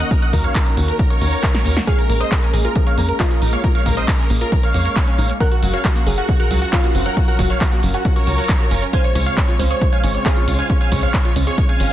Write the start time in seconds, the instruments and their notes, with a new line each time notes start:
Already playing: analog synth pad D#3 A#3 C#4 F#4
0.00 grand piano F#6, closed hi-hat
0.11 supersaw synth A#4, grand piano A#5, kick, closed hi-hat
0.22 supersaw synth D#5 F#5, grand piano F#6, closed hi-hat
0.33 analog synth bass D#2, supersaw synth A#4, grand piano A#5, kick, open hi-hat
0.44 supersaw synth C#5 F5, grand piano F6, closed hi-hat
0.55 supersaw synth A#4, grand piano A#5, kick, clap, closed hi-hat
0.66 supersaw synth A#4, grand piano A#5, closed hi-hat
0.77 analog synth bass D#2, open hi-hat
0.88 supersaw synth A#4, grand piano A#5, closed hi-hat
0.99 supersaw synth A#4, grand piano A#5, kick, closed hi-hat
1.10 supersaw synth A#4 C#5, grand piano C#6, closed hi-hat
1.21 analog synth bass D#2, open hi-hat
1.32 open hi-hat
1.43 kick, clap, closed hi-hat
1.54 snare, closed hi-hat
1.65 analog synth bass D#2, open hi-hat
1.77 snare, closed hi-hat
1.87 analog synth pad G#3, synth arpeggio sound A#3, synth pluck G#4, supersaw synth C#5 F5, grand piano F6, kick, closed hi-hat
1.98 synth arpeggio sound A#4, supersaw synth A#4, grand piano A#5, closed hi-hat
2.09 analog synth bass A#1, synth arpeggio sound A#3, supersaw synth A#4, grand piano A#5, open hi-hat
2.20 synth arpeggio sound A#4, supersaw synth C5 D#5, grand piano D#6, closed hi-hat
2.31 synth arpeggio sound G#3, supersaw synth A#4, kick, clap, closed hi-hat
2.42 synth arpeggio sound C#4, supersaw synth A#4, grand piano A#5, closed hi-hat
2.53 analog synth bass A#1, synth arpeggio sound A#3, synth pluck G#4, open hi-hat
2.64 synth arpeggio sound F4, supersaw synth A#4, grand piano A#5, closed hi-hat
2.75 synth arpeggio sound F3, supersaw synth A#4, grand piano A#5, kick, closed hi-hat
2.87 synth arpeggio sound A#4, supersaw synth C#5 F5, grand piano F6, closed hi-hat
2.98 analog synth bass F2, synth arpeggio sound A#3, supersaw synth A#4, grand piano A#5, open hi-hat
3.09 supersaw synth A#4, synth arpeggio sound A#4, grand piano A#5, closed hi-hat
3.20 synth arpeggio sound G#3, synth pluck F4, supersaw synth C5 D#5, grand piano D#6, kick, clap, closed hi-hat
3.31 synth arpeggio sound C#4, supersaw synth A#4, grand piano A#5, closed hi-hat
3.41 analog synth bass A#1, synth arpeggio sound D#4, supersaw synth A#4, grand piano A#5, open hi-hat
3.53 synth arpeggio sound A#3, supersaw synth C#5 F5, grand piano F6, closed hi-hat
3.64 synth arpeggio sound A#3, supersaw synth A#4, grand piano A#5, kick, closed hi-hat
3.75 synth arpeggio sound A#4, supersaw synth C#5 F5, grand piano F6, closed hi-hat
3.86 analog synth bass A#1, synth arpeggio sound A#3, supersaw synth A#4, grand piano A#5, kick, open hi-hat
3.97 synth arpeggio sound A#4, supersaw synth C5 D#5, grand piano D#6, closed hi-hat
4.08 synth arpeggio sound G#3, supersaw synth A#4, grand piano A#5, kick, clap, closed hi-hat
4.19 synth arpeggio sound C#4, supersaw synth A#4, grand piano A#5, closed hi-hat
4.30 analog synth bass A#1, synth arpeggio sound A#3, open hi-hat
4.41 synth arpeggio sound F4, supersaw synth A#4, grand piano A#5, closed hi-hat
4.52 synth arpeggio sound F3, supersaw synth A#4, kick, closed hi-hat
4.63 synth arpeggio sound A#4, supersaw synth C#5 F5, grand piano F6, closed hi-hat
4.74 analog synth bass F2, synth arpeggio sound A#3, open hi-hat
4.85 synth arpeggio sound A#4, closed hi-hat
4.96 synth arpeggio sound G#3, kick, clap, closed hi-hat
5.07 synth arpeggio sound C#4, closed hi-hat
5.18 analog synth bass A#1, synth arpeggio sound D#4, open hi-hat
5.29 synth arpeggio sound A#3, closed hi-hat
5.40 analog synth pad F#3 C#4 F4 A#4, synth arpeggio sound F#3, synth pluck A#4, supersaw synth A#4 F#5, grand piano F#6, kick, closed hi-hat
5.51 supersaw synth F#4, synth arpeggio sound F#4, grand piano F#5, closed hi-hat
5.62 analog synth bass F#1, synth arpeggio sound F#3, supersaw synth F#4, grand piano F#5, open hi-hat
5.73 synth arpeggio sound F#4, supersaw synth C#5 F5, grand piano F6, closed hi-hat
5.84 synth arpeggio sound F3, supersaw synth F#4, grand piano F#5, kick, clap, closed hi-hat
5.95 synth arpeggio sound A#3, supersaw synth F#4, grand piano F#5, closed hi-hat
6.06 analog synth bass F#1, synth arpeggio sound F#3, synth pluck G#4, open hi-hat
6.18 synth arpeggio sound C#4, supersaw synth F#4, grand piano F#5, closed hi-hat
6.29 synth arpeggio sound C#3, supersaw synth F#4, grand piano F#5, kick, closed hi-hat
6.40 synth arpeggio sound F#4, supersaw synth A#4 F#5, grand piano F#6, closed hi-hat
6.51 analog synth bass C#2, synth arpeggio sound F#3, supersaw synth F#4, grand piano F#5, open hi-hat
6.62 supersaw synth F#4, synth arpeggio sound F#4, grand piano F#5, closed hi-hat
6.73 synth arpeggio sound F3, synth pluck F4, supersaw synth C#5 F5, grand piano F6, kick, clap, closed hi-hat
6.83 synth arpeggio sound A#3, supersaw synth F#4, grand piano F#5, closed hi-hat
6.95 analog synth bass F#1, synth arpeggio sound C4, supersaw synth F#4, grand piano F#5, open hi-hat
7.06 synth arpeggio sound F#3, supersaw synth A#4 F#5, grand piano F#6, closed hi-hat
7.17 synth arpeggio sound F#3, supersaw synth F#4, grand piano F#5, kick, closed hi-hat
7.28 synth arpeggio sound F#4, supersaw synth A#4 F#5, grand piano F#6, closed hi-hat
7.39 analog synth bass F#1, synth arpeggio sound F#3, supersaw synth F#4, grand piano F#5, kick, open hi-hat
7.50 synth arpeggio sound F#4, supersaw synth C#5 F5, grand piano F6, closed hi-hat
7.61 synth arpeggio sound F3, supersaw synth F#4, grand piano F#5, kick, clap, closed hi-hat
7.72 synth arpeggio sound A#3, supersaw synth F#4, grand piano F#5, closed hi-hat
7.83 analog synth bass F#1, synth arpeggio sound F#3, open hi-hat
7.94 synth arpeggio sound C#4, supersaw synth F#4, grand piano F#5, closed hi-hat
8.05 synth arpeggio sound C#3, supersaw synth F#4, grand piano F#5, kick, closed hi-hat
8.16 synth arpeggio sound F#4, supersaw synth A#4 C#5, grand piano C#6, closed hi-hat
8.27 analog synth bass C#2, synth arpeggio sound F#4, open hi-hat
8.38 synth arpeggio sound F#4, open hi-hat
8.49 synth arpeggio sound F3, kick, clap
8.60 synth arpeggio sound F#4, closed hi-hat
8.71 analog synth bass F#1, synth arpeggio sound C#4, open hi-hat
8.82 synth arpeggio sound C#4, closed hi-hat
8.93 analog synth pad C#3 G#3 C4, synth arpeggio sound C#4, synth pluck C5, supersaw synth F5 G#5, grand piano G#6, kick, closed hi-hat, ride
9.04 supersaw synth C#5, synth arpeggio sound C#5, grand piano C#6, closed hi-hat
9.15 analog synth bass C#2, synth arpeggio sound C#4, supersaw synth C#5, grand piano C#6, open hi-hat, ride
9.26 supersaw synth C#5 F5, synth arpeggio sound C#5, grand piano F6, closed hi-hat
9.37 synth arpeggio sound C4, supersaw synth C#5, grand piano C#6, kick, clap, closed hi-hat, ride
9.48 synth arpeggio sound F4, supersaw synth C#5, grand piano C#6, closed hi-hat
9.59 analog synth bass C#2, synth arpeggio sound C#4, synth pluck C5, open hi-hat, ride
9.70 synth arpeggio sound G#4, supersaw synth C#5, grand piano C#6, closed hi-hat
9.81 synth arpeggio sound G#3, supersaw synth C#5, grand piano C#6, kick, closed hi-hat, ride
9.92 synth arpeggio sound C#5, supersaw synth F5 G#5, grand piano G#6, closed hi-hat
10.03 analog synth bass G#1, synth arpeggio sound C#4, supersaw synth C#5, grand piano C#6, open hi-hat, ride
10.15 supersaw synth C#5, synth arpeggio sound C#5, grand piano C#6, closed hi-hat
10.26 synth arpeggio sound C4, synth pluck G#4, supersaw synth C#5 F5, grand piano F6, kick, clap, closed hi-hat, ride
10.37 synth arpeggio sound F4, supersaw synth C#5, grand piano C#6, closed hi-hat
10.48 analog synth bass C#2, synth arpeggio sound F4, supersaw synth C#5, grand piano C#6, open hi-hat, ride
10.59 synth arpeggio sound C#4, supersaw synth F5 G#5, grand piano G#6, closed hi-hat
10.70 synth arpeggio sound C#4, supersaw synth C#5, grand piano C#6, kick, closed hi-hat, ride
10.81 synth arpeggio sound C#5, supersaw synth F5 G#5, grand piano G#6, closed hi-hat
10.92 analog synth bass C#2, synth arpeggio sound C#4, supersaw synth C#5, grand piano C#6, kick, open hi-hat, ride
11.03 supersaw synth C#5 F5, synth arpeggio sound C#5, grand piano F6, closed hi-hat
11.14 synth arpeggio sound C4, supersaw synth C#5, grand piano C#6, kick, clap, closed hi-hat, ride
11.25 synth arpeggio sound F4, supersaw synth C#5, grand piano C#6, closed hi-hat
11.36 analog synth bass C#2, synth arpeggio sound C#4, open hi-hat, ride
11.47 synth arpeggio sound G#4, supersaw synth C#5, grand piano C#6, closed hi-hat
11.58 synth arpeggio sound G#3, supersaw synth C#5, kick, closed hi-hat, ride
11.69 synth arpeggio sound C#5, supersaw synth F5 G#5, grand piano G#6, closed hi-hat
11.80 analog synth bass G#1, synth arpeggio sound C#4, open hi-hat, ride